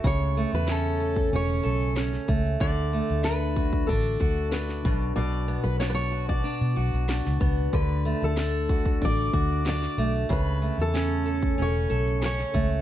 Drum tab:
SH |xxxxxxxxxxxxxxxx|xxxxxxxxxxxxxxxx|xxxxxx-xxx-xxxxx|xxxxxxxxxxxxxxxx|
SD |----o-------oo--|----o-------oo--|----o-------oo--|----o-------oo--|
BD |o------o------o-|o-----ooo-o---o-|-------o------o-|o-----ooo-o-----|

SH |xxxxxxxxxxxxxxxx|
SD |----o-------oo--|
BD |o------o------o-|